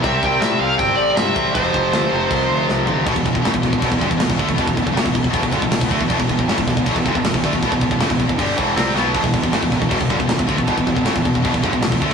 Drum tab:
CC |x---x---x---x---|x---x---x-------|x-x-x-x-x-x-x-x-|x-x-x-x-x-x-x-x-|
SD |----o-------o---|----o-------o---|----o-o-----o---|----o-------o---|
FT |----------------|--------------o-|----------------|----------------|
BD |o-o-----o-----o-|o-o-----o-------|oooo-ooooooo-ooo|oooo-ooooooo-ooo|

CC |x-x-x-x-x-x-x-x-|x-x-x-x-x-x-x---|x-x-x-x-x-x-x-x-|x-x-x-x-x-x-x-x-|
SD |----o-o-----o---|----o-------o-o-|----o-o-----o---|----o-------o---|
FT |----------------|----------------|----------------|----------------|
BD |oooo-ooooooo-ooo|oooo-oooo-o-----|oooo-ooooooo-ooo|oooo-ooooooo-oo-|